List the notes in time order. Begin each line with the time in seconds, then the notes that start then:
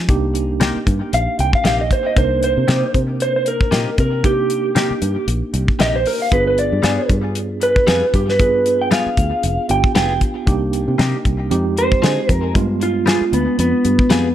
0.08 C2 A#3 D4 D#4 G4, kick, closed hi-hat
0.35 closed hi-hat
0.60 C3 A#3 D#4 G4, snare, closed hi-hat
0.76 muted fingered electric bass stroke
0.87 G2, kick, closed hi-hat
1.13 A#1 F5, closed hi-hat
1.39 C2 G5, closed hi-hat
1.53 F5, kick
1.64 A#1 C3 A#3 D#4 G4 F5, snare, closed hi-hat
1.81 D#5
1.91 C5, kick, closed hi-hat
2.06 D#5
2.16 C2 A#3 D4 D#4 A#4 C5, kick, closed hi-hat
2.43 C5, closed hi-hat
2.57 C3
2.68 C3 A#3 D#4 G4, snare, closed hi-hat
2.94 C3, kick, closed hi-hat
3.20 C5, closed hi-hat
3.36 C5
3.46 A#4, closed hi-hat
3.61 kick
3.71 A#2 C3 A#3 D#4 G4, snare, closed hi-hat
3.98 C3 A#4, kick, closed hi-hat
4.23 A#3 D4 D#4 G4, kick, closed hi-hat
4.50 closed hi-hat
4.75 C3 A#3 D#4 G4, snare, closed hi-hat
4.91 muted fingered electric bass stroke
5.02 G2, closed hi-hat
5.27 A#1, closed hi-hat
5.54 C2, closed hi-hat
5.68 kick
5.79 A#1 C3 A#3 D#4 G4 D#5, snare, closed hi-hat
5.96 C5
6.06 A#4, open hi-hat
6.22 F5
6.31 G1 B3 D4 F4 G#4 B4, kick, closed hi-hat
6.47 B4
6.58 D5, closed hi-hat
6.72 G2
6.83 G2 G3 B3 F4 G#4, snare, closed hi-hat
7.10 G2, kick, closed hi-hat
7.35 closed hi-hat
7.61 B4, closed hi-hat
7.76 kick
7.87 F2 G3 B3 F4 G#4, snare, closed hi-hat
8.14 G2 G4, kick, closed hi-hat
8.29 B4, snare
8.39 B3 D4 F4 G#4, kick, closed hi-hat
8.66 closed hi-hat
8.81 G5
8.91 G3 B3 F4 G#4 F5, snare, closed hi-hat
9.06 muted fingered electric bass stroke
9.17 D2, kick, closed hi-hat
9.43 F1, closed hi-hat
9.69 G1 B3 D4 F4 G4 G5, closed hi-hat
9.84 kick
9.95 F1 G3 B3 F4 G#4 G5, snare, closed hi-hat
10.21 kick, closed hi-hat
10.46 C2 A#3 D4 D#4 G4, kick, closed hi-hat
10.73 closed hi-hat
10.88 C3
10.98 C3 A#3 D#4 G4, snare, closed hi-hat
11.25 C2, kick, closed hi-hat
11.50 F2 G#3 C4 D#4 G4, closed hi-hat
11.77 C5, closed hi-hat
11.92 kick
12.02 D3 F3 C4 D#4 G#4, snare, closed hi-hat
12.29 F2 A#4, kick, closed hi-hat
12.54 G2 G#3 B3 D4 F4, kick, closed hi-hat
12.81 F4, closed hi-hat
13.06 G3 B3 F4 G#4, snare, closed hi-hat
13.21 muted fingered electric bass stroke
13.32 D2 B3, closed hi-hat
13.59 F2 B3, closed hi-hat
13.85 G2, closed hi-hat
13.99 kick
14.10 F2 G3 B3 F4 G#4, snare, closed hi-hat